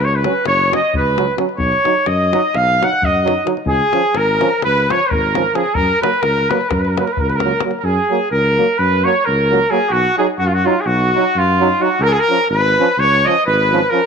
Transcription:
0.00 tuba C#2, trumpet B4
0.04 cornet C#5, trumpet C#5
0.15 cornet B4, trumpet B4
0.24 trombone F#3, euphonium C#4, davul high
0.46 tuba F#1, trumpet C#5, cornet C#5, davul high
0.61 davul high
0.70 trombone F#3, euphonium C#4, cornet D#5, trumpet D#5, davul high
0.94 tuba C#2, cornet B4, trumpet B4, davul low
1.16 trombone F#3, euphonium C#4, davul high
1.37 trombone F#3, euphonium C#4, davul high
1.49 davul high
1.58 tuba B1, cornet C#5, trumpet C#5, davul low
1.72 davul high
1.85 trombone F#3, euphonium D#4, davul high
1.97 davul high
2.06 tuba F#2, cornet D#5, trumpet D#5, davul high
2.33 trombone F#3, euphonium D#4, davul high
2.54 tuba B1, cornet F5, trumpet F5, davul high
2.68 davul high
2.80 trombone F#3, euphonium D#4, cornet F#5, davul high
2.85 trumpet F#5
2.93 davul high
3.02 tuba F#2, cornet D#5, davul low
3.06 trumpet D#5
3.24 trombone F#3, euphonium D#4, davul high
3.45 trombone F#3, euphonium D#4, davul high
3.57 davul high
3.66 tuba C#2, trumpet G#4, cornet G#4, davul low
3.80 davul high
3.93 trombone F3, euphonium C#4, davul high
4.04 davul high
4.15 tuba G#1, trumpet A#4, cornet A#4, davul high
4.40 trombone F3, euphonium C#4, davul high
4.62 tuba C#2, cornet B4, trumpet B4, davul high
4.77 davul high
4.89 trombone F3, euphonium C#4, trumpet C#5, cornet C#5, davul high
5.00 davul high
5.11 tuba G#1, cornet A#4, trumpet A#4, davul low
5.34 trombone F3, euphonium C#4, davul high
5.54 trombone F3, euphonium C#4, cornet G#4, trumpet G#4, davul high
5.66 davul high
5.75 tuba F#2, trumpet A#4, cornet A#4, davul low
6.02 trombone F#3, euphonium A#3, cornet B4, trumpet B4, davul high
6.13 davul high
6.21 tuba C#2, cornet A#4, trumpet A#4, davul high
6.37 davul high
6.49 trombone F#3, euphonium A#3, cornet B4, trumpet B4, davul high
6.61 davul high
6.69 tuba F#2, cornet A#4, davul high, davul low
6.74 trumpet A#4
6.79 cornet B4, trumpet B4
6.85 cornet A#4, davul high
6.91 trumpet A#4
6.97 trombone F#3, euphonium A#3, trumpet B4, cornet B4, davul high
7.04 cornet A#4, trumpet A#4, davul high
7.12 cornet B4, trumpet B4
7.17 tuba C#2, cornet A#4, davul low
7.21 trumpet A#4
7.29 trumpet B4, cornet B4, davul high
7.36 cornet A#4, trumpet A#4
7.40 trombone F#3, euphonium A#3, davul high
7.51 davul high
7.60 trombone F#3, euphonium A#3, davul high
7.71 davul high
7.77 cornet A#4, trumpet A#4
7.84 tuba F#2, cornet G#4, trumpet G#4
8.10 trombone F#3, euphonium A#3
8.31 tuba C#2, trumpet A#4, cornet A#4
8.58 trombone F#3, euphonium A#3
8.78 tuba F#2, cornet B4, trumpet B4
9.04 trombone F#3, euphonium A#3, cornet C#5, trumpet C#5
9.25 tuba C#2, trumpet A#4, cornet A#4
9.51 trombone F#3, euphonium A#3
9.70 trombone F#3, euphonium A#3, trumpet G#4, cornet G#4
9.89 tuba B1, trumpet F#4, cornet F#4
10.18 trombone F#3, euphonium D#4, cornet G#4, trumpet G#4
10.38 tuba F#2, cornet F#4, trumpet F#4
10.46 trumpet F4, cornet F4
10.53 trumpet F#4, cornet F#4
10.65 trombone F#3, euphonium D#4, cornet F4, trumpet F4
10.81 cornet G#4, trumpet G#4
10.86 tuba B1, cornet F#4, trumpet F#4
11.15 trombone F#3, euphonium D#4
11.35 tuba F#2, cornet F4, trumpet F4
11.60 trombone F#3, euphonium D#4
11.80 trombone F#3, euphonium D#4, cornet F#4, trumpet F#4
12.00 tuba C#2, trumpet A#4, cornet A#4
12.08 trumpet G#4
12.13 cornet G#4
12.17 trumpet A#4, cornet A#4
12.28 trombone F3, euphonium C#4
12.49 tuba G#1, trumpet B4, cornet B4
12.79 trombone F3, euphonium C#4
12.97 tuba C#2, trumpet C#5, cornet C#5
13.25 trombone F3, euphonium C#4, trumpet D#5, cornet D#5
13.46 tuba G#1, cornet B4, trumpet B4
13.72 trombone F3, euphonium C#4
13.90 trombone F3, euphonium C#4, trumpet A#4, cornet A#4

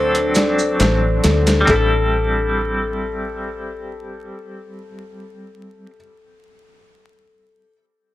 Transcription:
Already playing: fingered electric bass D2, clean electric guitar F#3 C4 D4 A4, synth drone D4, analog synth pad D4 D5, celesta A4, felt piano C5
0.15 closed hi-hat
0.35 celesta D5, snare, closed hi-hat, maracas
0.59 maracas
0.79 fingered electric bass A1, celesta C5, snare, closed hi-hat, maracas
1.23 fingered electric bass D2, celesta A4, snare, closed hi-hat, maracas
1.47 snare, closed hi-hat, maracas
1.61 clean electric guitar G3
1.65 fingered electric bass A1, clean electric guitar C4, celesta A4, kick, clap
1.70 clean electric guitar E4, felt piano A4
1.76 clean electric guitar A4

